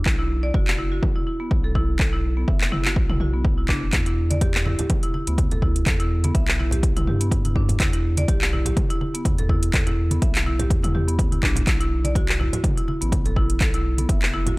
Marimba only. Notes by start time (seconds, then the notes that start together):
0.06 E4
0.19 E4
0.43 D5
0.54 F#4
0.78 E4
0.92 F#4
1.16 E4
1.27 E4
1.40 B3
1.64 A4
1.75 E4
2.00 A4
2.13 E4
2.37 B3
2.48 E5
2.72 E4
2.85 F#4
3.10 E4
3.21 F#4
3.34 B3
3.58 E4
3.69 D4
3.93 E4
4.06 E4
4.30 D5
4.41 G4
4.65 E4
4.79 G4
5.03 E4
5.14 E4
5.28 B3
5.52 A4
5.63 E4
5.87 A4
6.00 E4
6.24 B3
6.35 E5
6.59 E4
6.73 G4
6.97 E4
7.08 G4
7.21 B3
7.45 E4
7.56 D4
7.80 E4
7.94 E4
8.18 D5
8.29 G4
8.53 E4
8.66 G4
8.90 E4
9.01 E4
9.14 B3
9.39 A4
9.50 E4
9.74 A4
9.87 E4
10.11 B3
10.22 E5
10.46 E4
10.60 G4
10.84 E4
10.95 G4
11.08 B3
11.32 E4
11.43 D4
11.67 E4
11.80 E4
12.05 D5
12.15 F#4
12.40 E4
12.53 F#4
12.77 E4
12.88 E4
13.01 B3
13.26 A4
13.37 E4
13.61 A4
13.74 E4
13.98 B3
14.09 E5
14.33 E4
14.47 F#4